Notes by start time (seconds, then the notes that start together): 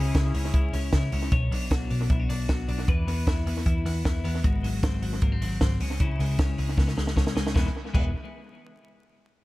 Already playing: C#2 C#3 C#4 E4 G#4
0.15 C#2 E4, kick, snare, closed hi-hat
0.34 C#2 C#4, open hi-hat
0.54 C#2 E4, kick, closed hi-hat
0.73 C#2 C#4, open hi-hat
0.93 C#2 E4, kick, snare, closed hi-hat
1.12 C#2 C#4, open hi-hat
1.32 B1 B2 C#5, kick, closed hi-hat
1.51 B1 D4, open hi-hat
1.71 B1 F#4, kick, snare, closed hi-hat
1.90 B1 D4, open hi-hat
2.10 B1 E4, kick, closed hi-hat
2.20 F#4
2.29 B1 D4, open hi-hat
2.49 B1 F#4, kick, snare, closed hi-hat
2.68 B1 D4, open hi-hat
2.88 E2 E3 B4, kick, closed hi-hat
3.07 E2 B3, open hi-hat
3.27 E2 E4, kick, snare, closed hi-hat
3.46 E2 B3, open hi-hat
3.66 E2 E4, kick, closed hi-hat
3.85 E2 B3, open hi-hat
4.05 E2 E4, kick, snare, closed hi-hat
4.24 E2 B3, open hi-hat
4.43 G#1 G#2 F#4, kick, closed hi-hat
4.63 G#1 F#3, open hi-hat
4.83 G#1 C4, kick, snare, closed hi-hat
5.02 G#1 F#3, open hi-hat
5.22 G#1 A#3, kick, closed hi-hat
5.32 C4
5.41 G#1 F#3, open hi-hat
5.61 G#1 C4, kick, snare, closed hi-hat
5.80 C#2 C#3, open hi-hat
6.00 C#3 E4, kick, closed hi-hat
6.19 C#2 G#3, open hi-hat
6.39 C#2 C#4, kick, snare, closed hi-hat
6.58 C#2 G#3, open hi-hat
6.77 C#2 B3, kick, snare
6.87 C#4, snare
6.97 C#2 G#3, snare
7.07 snare
7.16 C#2 C#4, kick, snare
7.27 snare
7.35 C#2 G#3, snare
7.47 snare
7.54 E1 E3 G#3 B3 E4, kick, snare
7.94 E1 E3 G#3 B3 E4, kick, crash